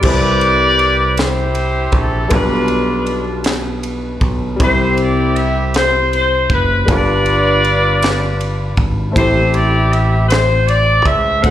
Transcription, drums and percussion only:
0.02 kick, crash
0.41 ride
0.79 ride
1.17 snare, ride
1.55 ride
1.92 kick, ride
2.30 kick, ride
2.68 ride
3.06 ride
3.44 snare, ride
3.83 ride
4.21 kick, ride
4.60 kick, ride
4.97 ride
5.36 ride
5.74 snare, ride
6.13 ride
6.50 kick, ride
6.88 kick, ride
7.26 ride
7.65 ride
8.02 snare, ride
8.41 ride
8.77 kick, ride
9.16 kick, ride
9.54 ride
9.93 ride
10.30 snare, ride
10.68 ride
11.05 kick, ride
11.44 kick, ride

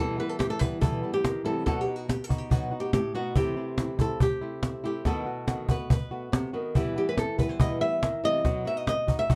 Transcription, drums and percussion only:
0.40 cajon slap
0.61 cajon bass
0.82 cajon bass
1.25 cajon slap
1.67 cajon bass, cajon slap
2.09 cajon slap
2.30 cajon bass
2.51 cajon bass
2.93 cajon slap
3.15 cajon slap
3.36 cajon bass
3.78 cajon slap
3.99 cajon bass
4.20 cajon bass
4.63 cajon slap
4.84 cajon slap
5.05 cajon bass, cajon slap
5.48 cajon slap
5.69 cajon bass
5.90 cajon bass
6.33 cajon slap
6.75 cajon bass
6.97 cajon slap
7.18 cajon slap
7.39 cajon bass
7.60 cajon bass
8.03 cajon slap
8.24 cajon slap
8.45 cajon bass, cajon slap
8.66 cajon slap
8.87 cajon slap
9.08 cajon bass
9.30 cajon bass

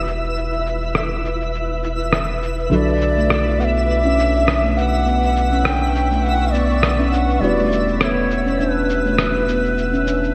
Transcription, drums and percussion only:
0.07 shaker
0.24 shaker
0.37 shaker
0.53 shaker
0.66 shaker
0.82 shaker
0.95 cross-stick, shaker
1.25 shaker
1.41 shaker
1.55 shaker
1.84 shaker
2.00 shaker
2.13 cross-stick, shaker
2.43 shaker
2.59 shaker
2.72 shaker
2.88 shaker
3.01 shaker
3.18 shaker
3.30 cross-stick, shaker
3.61 shaker
3.77 shaker
3.90 shaker
4.20 shaker
4.36 shaker
4.48 cross-stick, shaker
4.78 shaker
4.94 shaker
5.07 shaker
5.24 shaker
5.36 shaker
5.53 shaker
5.65 cross-stick, shaker
5.95 shaker
6.12 shaker
6.25 shaker
6.55 shaker
6.71 shaker
6.83 cross-stick, shaker
7.14 shaker
7.30 shaker
7.43 shaker
7.59 shaker
7.72 shaker
7.89 shaker
8.01 cross-stick, shaker
8.31 shaker
8.47 shaker
8.61 shaker
8.90 shaker
9.06 shaker
9.18 cross-stick, shaker
9.49 shaker
9.65 shaker
9.78 shaker
9.94 shaker
10.07 shaker
10.24 shaker

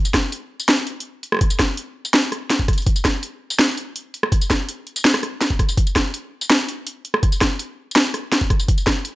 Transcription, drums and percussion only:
0.05 tambourine
0.14 kick, cross-stick, snare, closed hi-hat
0.32 closed hi-hat
0.60 tambourine
0.69 snare, closed hi-hat
0.87 closed hi-hat
1.00 closed hi-hat
1.23 closed hi-hat
1.32 cross-stick
1.34 cross-stick
1.37 cross-stick
1.39 kick, cross-stick, closed hi-hat
1.50 tambourine
1.59 kick, cross-stick, snare, closed hi-hat
1.77 closed hi-hat
2.05 tambourine
2.14 snare, closed hi-hat
2.32 cross-stick, closed hi-hat
2.50 snare, closed hi-hat
2.59 kick
2.68 kick, cross-stick, closed hi-hat
2.73 closed hi-hat
2.78 closed hi-hat, tambourine
2.82 closed hi-hat
2.87 kick, closed hi-hat
2.96 tambourine
3.05 kick, cross-stick, snare, closed hi-hat
3.23 closed hi-hat
3.50 tambourine
3.59 snare, closed hi-hat
3.77 closed hi-hat
3.96 closed hi-hat
4.14 closed hi-hat
4.23 cross-stick
4.32 kick, closed hi-hat
4.41 tambourine
4.50 kick, cross-stick, snare, closed hi-hat
4.69 closed hi-hat
4.87 closed hi-hat
4.96 tambourine
5.05 snare, closed hi-hat
5.14 cross-stick
5.23 cross-stick, closed hi-hat
5.41 snare, closed hi-hat
5.50 kick
5.59 kick, cross-stick, closed hi-hat
5.69 tambourine
5.77 kick, closed hi-hat
5.87 tambourine
5.96 kick, cross-stick, snare, closed hi-hat
6.14 closed hi-hat
6.41 tambourine
6.50 snare, closed hi-hat
6.68 closed hi-hat
6.87 closed hi-hat
7.05 closed hi-hat
7.14 cross-stick
7.23 kick, closed hi-hat
7.32 tambourine
7.41 kick, cross-stick, snare, closed hi-hat
7.59 closed hi-hat
7.91 tambourine
7.96 snare, closed hi-hat
8.14 cross-stick, closed hi-hat
8.32 snare, closed hi-hat
8.41 kick
8.50 kick, cross-stick, closed hi-hat
8.60 tambourine
8.68 kick, closed hi-hat
8.78 tambourine
8.87 kick, cross-stick, snare, closed hi-hat
9.05 closed hi-hat

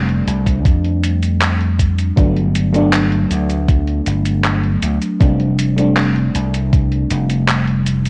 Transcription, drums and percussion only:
0.09 closed hi-hat
0.28 closed hi-hat, cabasa
0.46 kick, closed hi-hat, cabasa
0.65 kick, closed hi-hat, cabasa
0.85 closed hi-hat
1.03 closed hi-hat, cabasa
1.22 closed hi-hat, cabasa
1.41 clap, closed hi-hat, cabasa
1.60 closed hi-hat
1.79 kick, closed hi-hat, cabasa
1.98 closed hi-hat, cabasa
2.17 kick, closed hi-hat, cabasa
2.36 closed hi-hat
2.55 closed hi-hat, cabasa
2.74 closed hi-hat, cabasa
2.93 clap, closed hi-hat, cabasa
3.12 closed hi-hat
3.31 closed hi-hat, cabasa
3.50 closed hi-hat, cabasa
3.69 kick, closed hi-hat, cabasa
3.88 closed hi-hat
4.07 closed hi-hat, cabasa
4.26 closed hi-hat, cabasa
4.45 clap, closed hi-hat, cabasa
4.64 closed hi-hat
4.83 closed hi-hat, cabasa
5.02 closed hi-hat, cabasa
5.21 kick, closed hi-hat, cabasa
5.40 closed hi-hat
5.59 closed hi-hat, cabasa
5.78 closed hi-hat, cabasa
5.97 clap, closed hi-hat, cabasa
6.16 closed hi-hat
6.35 closed hi-hat, cabasa
6.54 closed hi-hat, cabasa
6.73 kick, closed hi-hat, cabasa
6.92 closed hi-hat
7.10 closed hi-hat, cabasa
7.30 closed hi-hat, cabasa
7.49 clap, closed hi-hat, cabasa
7.68 closed hi-hat
7.87 closed hi-hat, cabasa
8.06 closed hi-hat, cabasa

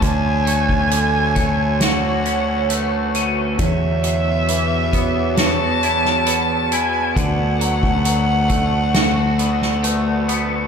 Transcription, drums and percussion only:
0.02 kick, closed hi-hat
0.47 closed hi-hat
0.69 kick
0.91 closed hi-hat
1.36 kick, closed hi-hat
1.81 snare, closed hi-hat
2.26 closed hi-hat
2.70 closed hi-hat
3.15 closed hi-hat
3.59 kick, closed hi-hat
4.04 closed hi-hat
4.49 closed hi-hat
4.93 kick, closed hi-hat
5.37 snare, closed hi-hat
5.83 closed hi-hat
6.05 snare
6.27 closed hi-hat
6.72 closed hi-hat
7.17 kick, closed hi-hat
7.61 closed hi-hat
7.83 kick
8.05 closed hi-hat
8.50 kick, closed hi-hat
8.94 snare, closed hi-hat
9.39 closed hi-hat
9.62 snare
9.84 closed hi-hat
10.29 closed hi-hat

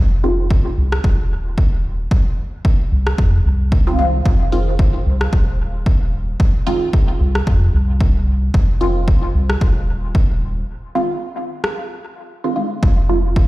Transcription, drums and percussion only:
0.51 kick
0.92 cross-stick
1.04 kick
1.58 kick
2.11 kick
2.65 kick
3.07 cross-stick
3.18 kick
3.72 kick
4.26 kick
4.79 kick
5.21 cross-stick
5.33 kick
5.86 kick
6.40 kick
6.93 kick
7.35 cross-stick
7.47 kick
8.01 kick
8.54 kick
9.08 kick
9.50 cross-stick
9.61 kick
10.15 kick
11.64 cross-stick
12.83 kick
13.36 kick

